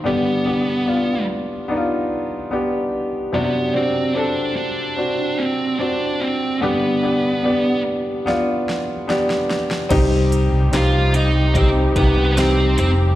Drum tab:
CC |----------------|----------------|----------------|x---------------|
HH |----------------|----------------|----------------|x-x-x-x-x-x-x-x-|
SD |----------------|----------------|--------o-o-oooo|----o-------o---|
BD |----------------|----------------|----------------|o-------o-o-----|